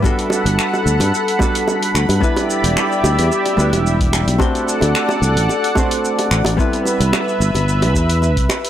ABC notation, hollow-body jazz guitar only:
X:1
M:4/4
L:1/8
Q:"Swing 16ths" 1/4=110
K:G
V:1 name="Hollow-body jazz guitar"
[G,B,DFA]4- [G,B,DFA] [G,B,DFA]3 | [G,B,DEB]4- [G,B,DEB] [G,B,DEB]3 | [A,CDFc]4- [A,CDFc] [A,CDFc]3 | [G,B,CEB]4- [G,B,CEB] z3 |]